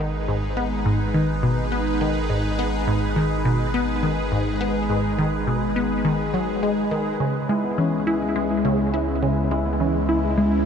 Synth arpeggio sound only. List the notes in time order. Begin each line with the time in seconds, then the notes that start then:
0.00 D#3
0.28 G#2
0.57 B3
0.86 G#2
1.14 D#3
1.43 B2
1.72 B3
2.01 D#3
2.30 G#2
2.59 B3
2.88 G#2
3.16 D#3
3.45 B2
3.74 B3
4.03 D#3
4.32 G#2
4.61 B3
4.90 G#2
5.19 D#3
5.47 B2
5.76 B3
6.05 D#3
6.34 F#3
6.63 G#3
6.91 D#3
7.20 C#3
7.49 G#3
7.78 E3
8.07 E4
8.36 G#3
8.65 C#3
8.94 E4
9.23 C#3
9.51 G#3
9.80 E3
10.09 E4
10.38 G#3